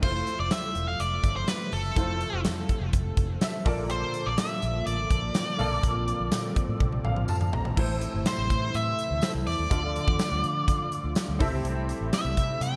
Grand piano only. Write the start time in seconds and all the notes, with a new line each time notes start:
0.02 A3 E4 F4 C5
1.96 A3 E4 F4 C5
3.42 E5
3.65 A#2 A#3 F4 A4 D5 A5
5.58 A#2 A#3 F4 A4 D5
7.05 F5
7.29 A5
7.53 A#5
7.76 A2 E4 A4 C5
9.22 E4 A4 C5
9.70 D3 F4 A4 D5
11.39 C3 C4 E4 G4 A4 E5